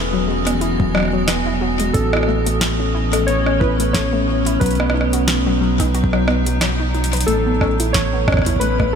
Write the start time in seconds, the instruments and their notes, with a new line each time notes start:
Already playing: analog synth bass E1, ambient pad E3 B3 F#4 G#5, synth arpeggio sound E4, synth keys B4
0.13 synth arpeggio sound F#3
0.28 synth arpeggio sound G#3
0.46 synth arpeggio sound B3, cross-stick, closed hi-hat
0.61 synth arpeggio sound E4, closed hi-hat
0.80 synth arpeggio sound F#3, kick
0.95 synth arpeggio sound F#3, cross-stick
0.97 cross-stick
1.00 cross-stick
1.03 cross-stick
1.05 cross-stick
1.08 cross-stick
1.10 synth arpeggio sound F#3, cross-stick
1.28 synth arpeggio sound B3, cross-stick, snare, closed hi-hat
1.46 synth arpeggio sound E4
1.61 synth arpeggio sound F#3
1.80 synth arpeggio sound G#3, closed hi-hat
1.93 analog synth bass A1, ambient pad A3 C#4, synth arpeggio sound C#4, synth keys A4, kick, closed hi-hat
2.13 synth arpeggio sound E4, cross-stick
2.17 cross-stick
2.23 cross-stick
2.28 synth arpeggio sound A3
2.46 synth arpeggio sound A3, closed hi-hat
2.61 synth arpeggio sound A3, snare, closed hi-hat
2.80 synth arpeggio sound C#4
2.94 synth arpeggio sound E4
3.13 synth arpeggio sound A3, cross-stick, closed hi-hat
3.27 synth arpeggio sound B3, synth keys C#5, closed hi-hat
3.46 synth arpeggio sound C#4, cross-stick
3.60 synth arpeggio sound E4, synth keys B4, kick
3.80 synth arpeggio sound A3, closed hi-hat
3.93 synth arpeggio sound A3, synth keys C#5, kick, snare, closed hi-hat
4.13 synth arpeggio sound A3
4.28 synth arpeggio sound C#4
4.46 synth arpeggio sound E4, closed hi-hat
4.60 analog synth bass B1, synth arpeggio sound F#3, ambient pad F#3 D#4, synth keys B4, kick, closed hi-hat
4.66 closed hi-hat
4.71 closed hi-hat
4.75 closed hi-hat
4.80 synth arpeggio sound B3, cross-stick
4.90 cross-stick
4.94 synth arpeggio sound D#4
5.01 cross-stick
5.13 synth arpeggio sound F#4, closed hi-hat
5.28 synth arpeggio sound F#3, snare, closed hi-hat
5.47 synth arpeggio sound F#3
5.61 synth arpeggio sound F#3
5.80 synth arpeggio sound D#4, kick, cross-stick, closed hi-hat
5.94 synth arpeggio sound F#4, closed hi-hat
6.04 kick
6.13 synth arpeggio sound F#3, cross-stick
6.28 synth arpeggio sound B3, cross-stick
6.46 synth arpeggio sound F#3, closed hi-hat
6.61 synth arpeggio sound F#3, cross-stick, snare, closed hi-hat
6.80 synth arpeggio sound D#4
6.94 synth arpeggio sound D#4, closed hi-hat
7.04 closed hi-hat
7.06 closed hi-hat
7.13 synth arpeggio sound B4, closed hi-hat
7.17 closed hi-hat
7.21 closed hi-hat
7.26 analog synth bass A1, ambient pad A3 B3 C#4, synth arpeggio sound A3, synth keys A4, closed hi-hat
7.46 synth arpeggio sound B3
7.61 synth arpeggio sound C#4, kick, cross-stick
7.80 synth arpeggio sound E4, closed hi-hat
7.93 synth arpeggio sound A3, synth keys C#5, kick, snare, closed hi-hat
8.13 synth arpeggio sound B3
8.28 synth arpeggio sound C#4, kick, cross-stick
8.32 kick, cross-stick
8.37 kick, cross-stick
8.42 cross-stick
8.46 synth arpeggio sound E4, kick, closed hi-hat
8.50 kick
8.56 synth keys B4, kick
8.61 synth arpeggio sound A3, closed hi-hat
8.80 synth arpeggio sound A3, kick, cross-stick